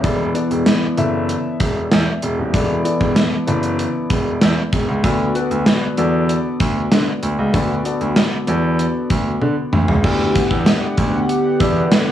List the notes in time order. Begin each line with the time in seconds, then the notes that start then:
Already playing: C#5 E5
0.03 E1 E3 B3 E4 A4 D5, kick, closed hi-hat
0.34 B3 E4 A4 D5, closed hi-hat
0.51 E1, closed hi-hat
0.66 snare, closed hi-hat
0.97 F#1 B3 E4 A4 E5, closed hi-hat
1.29 closed hi-hat
1.60 E1, kick, closed hi-hat
1.91 E2, snare, closed hi-hat
2.22 E1, closed hi-hat
2.38 D#1
2.53 E1 E3 B3 E4 A4 D5, kick, closed hi-hat
2.84 B3 E4 A4 D5, closed hi-hat
3.01 E1, kick
3.16 snare, closed hi-hat
3.47 F#1 B3 E4 A4 D5, closed hi-hat
3.63 closed hi-hat
3.79 closed hi-hat
4.10 E1, kick, closed hi-hat
4.41 E2, snare, closed hi-hat
4.73 E1, kick, closed hi-hat
4.88 C#2
5.03 D2 D3 B3 F#4 A4 D5, kick, closed hi-hat
5.34 B3 F#4 A4 B4, closed hi-hat
5.51 D2, closed hi-hat
5.66 snare, closed hi-hat
5.97 E2 B3 F#4 A4 D5, closed hi-hat
6.29 closed hi-hat
6.60 D2, kick, closed hi-hat
6.91 D3, snare, closed hi-hat
7.23 D2, closed hi-hat
7.38 C#2
7.53 D2 D3 B3 F#4 A4 D5, kick, closed hi-hat
7.84 B3 F#4 A4 D5, closed hi-hat
8.01 D2, closed hi-hat
8.16 snare, closed hi-hat
8.47 E2 B3 F#4 A4 D5, closed hi-hat
8.79 closed hi-hat
9.10 D2, kick, closed hi-hat
9.42 D3, high tom
9.73 D2, mid tom
9.88 C#2, floor tom
10.03 D2 D3 B3 E4 G4 D5 F#5, kick, crash
10.35 kick, closed hi-hat
10.51 E2, kick
10.66 snare, closed hi-hat
10.97 D2, kick, closed hi-hat
11.29 closed hi-hat
11.60 E2 B3 E4 G4 D5, kick, closed hi-hat
11.92 snare, closed hi-hat